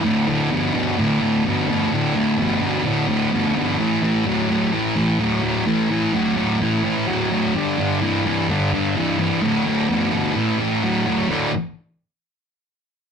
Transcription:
X:1
M:4/4
L:1/8
Q:1/4=128
K:D
V:1 name="Distorted electric guitar" clef=bass
[D,,A,,] [D,,A,,] [D,,B,,] [D,,B,,] [D,,A,,] [D,,A,,] [D,,B,,] [D,,B,,] | [D,,A,,] [D,,A,,] [D,,B,,] [D,,B,,] [D,,A,,] [D,,A,,] [D,,B,,] [D,,B,,] | [A,,E,] [A,,E,] [A,,F,] [A,,F,] [A,,E,] [A,,E,] [A,,F,] [A,,F,] | [A,,E,] [A,,E,] [A,,F,] [A,,F,] [A,,E,] [A,,E,] [A,,F,] [A,,F,] |
[G,,D,] [G,,D,] [G,,E,] [G,,E,] [G,,D,] [G,,D,] [G,,E,] [G,,E,] | [D,,A,,] [D,,A,,] [D,,B,,] [D,,B,,] [A,,E,] [A,,E,] [A,,F,] [A,,F,] | [D,,A,,D,] z6 z |]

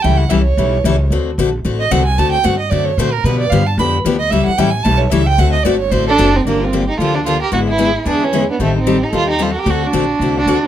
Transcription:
X:1
M:4/4
L:1/16
Q:"Swing" 1/4=225
K:Dphr
V:1 name="Violin"
g2 ^f2 =e2 ^c8- c2 | z8 z2 e2 ^f2 _a2 | a2 g2 ^f2 e2 d2 ^c2 =c2 B2 | =B2 d2 f2 a2 =b2 z4 e2 |
=e2 ^f2 g2 _a2 =a2 ^c2 e2 g2 | ^f2 e2 d2 ^c2 =c2 A2 z2 E2 | D2 F4 G2 A2 F2 A2 B2 | =B2 ^G6 G2 =E4 D2 |
C2 E4 G2 A2 G2 A3/2 A/2 B2 | A2 ^F8 F4 E2 |]
V:2 name="Violin"
z16 | z16 | z16 | z16 |
z16 | z8 z2 D4 C2 | B,2 C4 E2 F2 D2 F2 G2 | ^F2 =E6 D2 ^C4 =B,2 |
A,2 C4 E2 F2 E2 F3/2 ^F/2 G2 | ^F2 D8 D4 z2 |]
V:3 name="Steel-string acoustic guitar"
[=E,G,^C=EA]2 z2 [E,G,CEA]2 z2 [E,G,CEA]2 z2 [E,G,CEA]2 z2 | [D,A,C^FA]2 z2 [D,A,CFA]2 z2 [D,A,CFA]2 z2 [D,A,CFA]2 z2 | [D,A,C^FA]2 z2 [D,A,CFA]2 z2 [D,A,CFA]2 z2 [D,A,CFA]2 z2 | [D,F,=B,DG]2 z2 [D,F,B,DG]2 z2 [D,F,B,DG]2 z2 [D,F,B,DG]2 z2 |
[=E,G,^C=EA]2 z2 [E,G,CEA]2 z2 [E,G,CEA]2 z2 [E,G,CEA]2 z2 | [D,A,C^FA]2 z2 [D,A,CFA]2 z2 [D,A,CFA]2 z2 [D,A,CFA]2 z2 | [D,F,B,DG]2 z2 [D,F,B,DG]2 z2 [D,F,B,DG]2 z2 [D,F,B,DG]2 z2 | [D,^G,=B,=E^G]2 z2 [D,G,B,EG]2 z2 [D,G,B,EG]2 z2 [D,G,B,EG]2 z2 |
[E,G,CGA]2 z2 [E,G,CGA]2 z2 [E,G,CGA]2 z2 [E,G,CGA]2 z2 | [D,A,C^FA]2 z2 [D,A,CFA]2 z2 [D,A,CFA]2 z2 [D,A,CFA]2 z2 |]
V:4 name="Upright bass" clef=bass
^C,,4 =C,,4 =B,,,4 ^C,,4 | D,,4 B,,,4 A,,,4 C,,4 | D,,4 G,,4 ^F,,4 B,,4 | =B,,4 G,,4 F,,4 D,,4 |
^C,,2 z2 A,,,4 =B,,,4 C,,4 | D,,4 G,,,4 A,,,4 ^F,,,4 | G,,,8 D,,8 | ^G,,,8 =E,,8 |
A,,,8 E,,8 | D,,4 B,,,4 C,,4 D,,4 |]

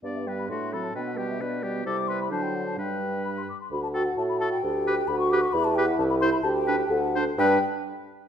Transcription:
X:1
M:2/4
L:1/16
Q:1/4=130
K:G
V:1 name="Flute"
d e g b c'2 b a | g f g e d4 | d'2 c' b a g f a | g4 b c' d' c' |
[K:D] b a g f a b a g- | g4 b c' d' c' | [K:G] b a g f a b c' b | a g3 f4 |
g2 z6 |]
V:2 name="Oboe"
d2 B2 F2 A2 | B2 G2 B2 G2 | A2 B2 c4 | B6 z2 |
[K:D] z2 A z3 A z | z2 B z3 B z | [K:G] z2 B z3 c z | z2 B z3 c z |
B2 z6 |]
V:3 name="Clarinet"
D2 B,2 D2 C2 | D2 B,2 D2 B,2 | E4 D4 | D6 z2 |
[K:D] z2 F z3 F z | z2 G z3 G z | [K:G] z2 G z3 E z | z2 D z3 D z |
D2 z6 |]
V:4 name="French horn"
B,2 G,2 A,2 F,2 | B,2 G,2 B,2 G,2 | G,4 F,4 | G,6 z2 |
[K:D] F8 | G4 F4 | [K:G] E8 | G4 A2 z2 |
G,2 z6 |]
V:5 name="Bassoon" clef=bass
G,,4 A,,4 | B,,4 B,,4 | C,4 D,4 | G,,6 z2 |
[K:D] D,,4 A,,4 | D,,4 D,,4 | [K:G] E,,4 C,,4 | D,,4 D,,4 |
G,,2 z6 |]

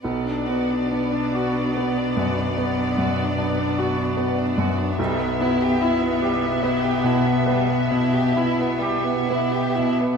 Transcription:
X:1
M:12/8
L:1/16
Q:3/8=48
K:Bm
V:1 name="Violin section"
d24 | e16- e6- e z |]
V:2 name="Violin section"
B, D F D B, D F D B, D F D B, D F D B, D F D B, D F D | G, B, E G E B, G, B, E G E B, G, B, E G E B, G, B, E G E B, |]
V:3 name="Grand piano"
B,,,2 B,2 D2 F2 B,2 F,,2 B,2 F,,2 D2 F2 B,2 F,,2 | B,,,2 B,2 E2 G2 B,2 B,,2 B,2 B,,2 E2 G2 B,2 B,,2 |]
V:4 name="Viola section"
B,24 | B,16- B,6- B, z |]
V:5 name="Cello section" clef=bass
B,,24 | B,,16- B,,6- B,, z |]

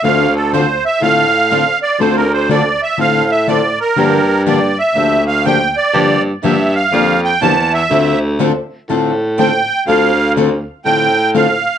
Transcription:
X:1
M:4/4
L:1/8
Q:"Swing" 1/4=122
K:Dm
V:1 name="Accordion"
f A c e f3 d | (3c B c d e f e d B- | B2 d e2 f g d- | d z e f2 g a e- |
e z4 z g2 | f2 z2 g2 f2 |]
V:2 name="Steel-string acoustic guitar"
[D,A,CFA] z [D,A,CFA] z [D,A,CFA] z [D,A,CFA] z | [D,A,CFA] z [D,A,CFA] z [D,A,CFA] z [D,A,CFA] z | [D,F,B,DG] z [D,F,B,DG] z [D,F,B,DG] z [D,F,B,DG] z | [D,F,B,DG] z [D,F,B,DG] z [D,F,B,DG] z [D,F,B,DG] z |
[D,A,CFA] z [D,A,CFA] z [D,A,CFA] z [D,A,CFA] z | [D,A,CFA] z [D,A,CFA] z [D,A,CFA] z [D,A,CFA] z |]
V:3 name="Steel-string acoustic guitar"
[D,F,CDA] z [D,F,CDA] z [D,F,CDA] z [D,F,CDA] z | [D,F,CDA] z [D,F,CDA] z [D,F,CDA] z [D,F,CDA] z | [D,F,B,DG] z [D,F,B,DG] z [D,F,B,DG] z [D,F,B,DG] z | [D,F,B,DG] z [D,F,B,DG] z [D,F,B,DG] z [D,F,B,DG] z |
[D,F,CDA] z [D,F,CDA] z [D,F,CDA] z [D,F,CDA] z | [D,F,CDA] z [D,F,CDA] z [D,F,CDA] z [D,F,CDA] z |]
V:4 name="Baritone saxophone" clef=bass
D,,4 A,,3 z | D,,4 A,,4 | G,,4 D,,4 | G,,2 G,,2 F,,2 E,,2 |
D,,3 z A,,4 | D,,4 A,,4 |]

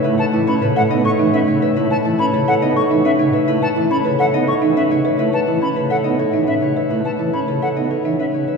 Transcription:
X:1
M:3/4
L:1/16
Q:1/4=105
K:Alyd
V:1 name="Flute"
z a z b z f z c' z e z2 | z a z b z f z c' z e z2 | z a z b z f z c' z e z2 | z a z b z f z3 e z2 |
z a z b z f z3 e z2 |]
V:2 name="Harp"
[ABcdef] f A c B e d c e B c e | B f A c B e d c e B c e | B f A c B e d c e B c e | B f A c B e d c e B c e |
B f A c B e d c e B c e |]
V:3 name="Marimba"
E B E C B A D A D C D B | E B E C B A D A D C D B | E B E C B A D A D C D B | E B E C B A D A D C D B |
E B E C B A D A D C D B |]
V:4 name="Pipe organ" clef=bass
A, z E, z C, z B, z E, z C, z | A, z E, z C, z B, z E, z C, z | A, z E, z C, z B, z E, z C, z | A, z E, z C, z B, z E, z C, z |
A, z E, z C, z B, z E, z C, z |]
V:5 name="Double bass" clef=bass
A,,12- | A,,12- | A,,12- | A,,12- |
A,,12 |]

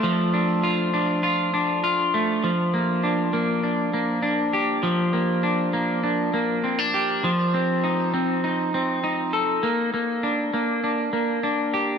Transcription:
X:1
M:4/4
L:1/16
Q:1/4=100
K:Bb
V:1 name="Clean electric guitar"
[F,A,DF]2 D2 F2 D2 F2 D2 F2 A,2 | F,2 B,2 D2 B,2 D2 B,2 D2 G2 | F,2 B,2 D2 B,2 D2 B,2 C D G2 | F,2 C2 E2 C2 E2 C2 E2 A2 |
B,2 B,2 D2 B,2 D2 B,2 D2 G2 |]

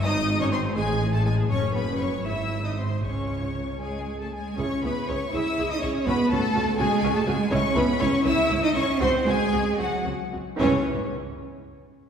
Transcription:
X:1
M:6/8
L:1/16
Q:3/8=79
K:C#m
V:1 name="Violin section"
d'3 c' ^b2 g3 a g2 | c'2 b2 c'2 e'3 d' ^b2 | c'6 g3 a g2 | c'2 b2 c'2 e'3 d' c'2 |
b2 a4 g3 a g2 | c'2 b2 c'2 e'3 d' c'2 | ^b2 g4 f2 z4 | c2 z8 z2 |]
V:2 name="Violin section"
d3 c ^B2 G3 A G2 | c2 B2 c2 e3 d ^B2 | c6 G3 A G2 | c2 B2 c2 e3 d c2 |
B2 A4 G3 A G2 | c2 B2 c2 e3 d c2 | ^B2 G4 F2 z4 | C2 z8 z2 |]
V:3 name="Viola section"
D3 C ^B,2 G,3 A, G,2 | C2 B,2 C2 E3 D ^B,2 | C6 z6 | [EG]2 [EG]2 [EG]2 [EG]2 [EG]2 [EG]2 |
[CF]2 [CF]2 [CF]2 [CF]2 [CF]2 [CF]2 | [CE]2 [CE]2 [CE]2 [CE]2 [CE]2 [CE]2 | [^B,F]2 [B,F]2 [B,F]2 [B,F]2 [B,F]2 [B,F]2 | [E,C]2 z8 z2 |]
V:4 name="Cello section"
G,,6 A,,6 | F,,6 G,,6 | C,6 G,3 A, G,2 | C2 B,2 C2 E3 D C2 |
B,2 A,4 G,3 A, G,2 | C2 B,2 C2 E3 D C2 | ^B,2 G,4 F,2 z4 | C2 z8 z2 |]
V:5 name="Double bass section" clef=bass
G,,,6 A,,,6 | F,,,6 G,,,6 | C,,8- C,,2 z2 | C,,2 C,,2 C,,2 C,,2 C,,2 C,,2 |
C,,2 C,,2 C,,2 C,,2 C,,2 C,,2 | C,,2 C,,2 C,,2 C,,2 C,,2 C,,2 | C,,2 C,,2 C,,2 C,,2 C,,2 C,,2 | C,,2 z8 z2 |]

